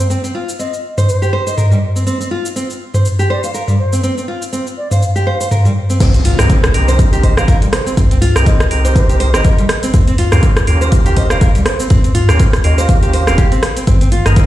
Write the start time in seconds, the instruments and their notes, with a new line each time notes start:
0.10 nylon-string guitar C4, shaker
0.24 nylon-string guitar C4, shaker
0.35 nylon-string guitar F4
0.49 shaker
0.59 nylon-string guitar C4, bansuri D#5, shaker
0.74 shaker
0.98 nylon-string guitar C5, mid tom, shaker
1.08 bansuri C5, shaker
1.22 nylon-string guitar G4, shaker
1.33 nylon-string guitar C5
1.47 nylon-string guitar C5, bansuri D#5, shaker
1.57 nylon-string guitar A#4, mid tom, shaker
1.71 nylon-string guitar G3, mid tom, shaker
1.96 nylon-string guitar C4, shaker
2.07 nylon-string guitar C4, shaker
2.20 nylon-string guitar C4, shaker
2.31 nylon-string guitar F4
2.46 shaker
2.56 nylon-string guitar C4, shaker
2.70 shaker
2.94 nylon-string guitar C5, mid tom, shaker
3.05 shaker
3.19 nylon-string guitar G4, shaker
3.30 nylon-string guitar C5, bansuri D5
3.44 nylon-string guitar C5, bansuri F5, shaker
3.54 nylon-string guitar A#4, bansuri F5, shaker
3.68 nylon-string guitar G3, mid tom, shaker
3.79 bansuri C5
3.93 nylon-string guitar C4, shaker
4.03 nylon-string guitar C4, shaker
4.17 nylon-string guitar C4, shaker
4.28 nylon-string guitar F4
4.42 shaker
4.53 nylon-string guitar C4, shaker
4.67 shaker
4.77 bansuri D5
4.91 nylon-string guitar C5, bansuri F5, mid tom, shaker
5.02 shaker
5.16 nylon-string guitar G4, shaker
5.26 nylon-string guitar C5, bansuri F5
5.41 nylon-string guitar C5, shaker
5.51 nylon-string guitar A#4, mid tom, shaker
5.65 nylon-string guitar G3, mid tom, shaker
5.90 nylon-string guitar C4, shaker
6.00 sub bass C2, nylon-string guitar C4, kick, closed hi-hat, mid tom, crash, impact, shaker
6.14 nylon-string guitar C4, closed hi-hat, shaker
6.25 nylon-string guitar F4, open hi-hat
6.39 sub bass C2, tonewheel organ C4 D#4 G4 A#4, cross-stick, closed hi-hat, mid tom, shaker
6.50 nylon-string guitar C4, kick, closed hi-hat, shaker
6.64 cross-stick, closed hi-hat, shaker
6.74 sub bass C2, tonewheel organ C4 D#4 G4 A#4, open hi-hat
6.88 nylon-string guitar C5, shaker
6.99 kick, closed hi-hat, shaker
7.13 sub bass C2, nylon-string guitar G4, closed hi-hat, shaker
7.23 nylon-string guitar C5, bansuri D#5, kick, open hi-hat
7.37 sub bass G1, tonewheel organ C4 D#4 G4 A#4, nylon-string guitar C5, bansuri F5, cross-stick, shaker
7.48 nylon-string guitar A#4, bansuri F5, kick, closed hi-hat, shaker
7.62 sub bass A#1, nylon-string guitar G3, closed hi-hat, shaker
7.73 bansuri C5, cross-stick, open hi-hat
7.86 nylon-string guitar C4, shaker
7.97 sub bass C2, nylon-string guitar C4, kick, closed hi-hat, mid tom, shaker
8.11 nylon-string guitar C4, closed hi-hat, shaker
8.22 nylon-string guitar F4, mid tom, open hi-hat
8.36 sub bass C2, tonewheel organ C4 D#4 G4 A#4, cross-stick, closed hi-hat, shaker
8.46 nylon-string guitar C4, bansuri D#5, kick, closed hi-hat, shaker
8.60 cross-stick, closed hi-hat, shaker
8.71 sub bass C2, tonewheel organ C4 D#4 G4 A#4, open hi-hat
8.85 nylon-string guitar C5, closed hi-hat, shaker
8.96 bansuri C5, kick, closed hi-hat, shaker
9.09 sub bass C2, nylon-string guitar G4, closed hi-hat, shaker
9.20 nylon-string guitar C5, open hi-hat
9.34 sub bass G1, tonewheel organ C4 D#4 G4 A#4, nylon-string guitar C5, bansuri D#5, cross-stick, shaker
9.45 nylon-string guitar A#4, kick, closed hi-hat, shaker
9.58 sub bass A#1, nylon-string guitar G3, closed hi-hat, shaker
9.69 cross-stick, open hi-hat
9.83 nylon-string guitar C4, open hi-hat, shaker
9.94 sub bass D#2, nylon-string guitar C4, kick, closed hi-hat, mid tom, shaker
10.07 nylon-string guitar C4, closed hi-hat, shaker
10.18 nylon-string guitar F4, open hi-hat
10.32 sub bass D#2, tonewheel organ C#4 F4 G4 A#4, cross-stick, closed hi-hat, mid tom, shaker
10.43 nylon-string guitar C4, kick, closed hi-hat, shaker
10.57 cross-stick, closed hi-hat, shaker
10.67 sub bass D#2, tonewheel organ C#4 F4 G4 A#4, open hi-hat
10.81 nylon-string guitar C5, shaker
10.92 kick, closed hi-hat, shaker
11.06 sub bass D#2, nylon-string guitar G4, closed hi-hat, shaker
11.17 nylon-string guitar C5, bansuri D#5, kick, open hi-hat
11.30 sub bass D#1, tonewheel organ C#4 F4 G4 A#4, nylon-string guitar C5, bansuri F5, cross-stick, shaker
11.41 nylon-string guitar A#4, bansuri F5, kick, closed hi-hat, shaker
11.55 sub bass C#2, nylon-string guitar G3, closed hi-hat, shaker
11.66 bansuri C5, cross-stick, open hi-hat
11.79 nylon-string guitar C4, shaker
11.90 sub bass D#2, nylon-string guitar C4, kick, closed hi-hat, mid tom, shaker
12.04 nylon-string guitar C4, closed hi-hat, shaker
12.15 nylon-string guitar F4, mid tom, open hi-hat
12.29 sub bass D#2, tonewheel organ C#4 F4 G4 A#4, cross-stick, closed hi-hat, shaker
12.39 nylon-string guitar C4, kick, closed hi-hat, shaker
12.53 cross-stick, closed hi-hat, shaker
12.64 sub bass D#2, tonewheel organ C#4 F4 G4 A#4, bansuri D#5, open hi-hat
12.78 nylon-string guitar C5, bansuri F5, closed hi-hat, shaker
12.89 kick, closed hi-hat, shaker
13.03 sub bass D#2, nylon-string guitar G4, closed hi-hat, shaker
13.13 nylon-string guitar C5, bansuri F5, open hi-hat
13.27 sub bass D#1, nylon-string guitar C4, tonewheel organ C#4 F4 G4 A#4, cross-stick, shaker
13.38 nylon-string guitar G4, kick, closed hi-hat, shaker
13.52 sub bass A#1, nylon-string guitar C4, closed hi-hat, shaker
13.63 cross-stick, open hi-hat
13.77 nylon-string guitar C4, open hi-hat, shaker
13.87 sub bass G#1, nylon-string guitar C4, kick, closed hi-hat, mid tom, shaker
14.01 nylon-string guitar C4, closed hi-hat, shaker
14.12 nylon-string guitar F4, open hi-hat
14.26 sub bass G#1, tonewheel organ A#3 D#4 G#4 A#4, cross-stick, closed hi-hat, mid tom, shaker
14.36 nylon-string guitar C4, kick, closed hi-hat, shaker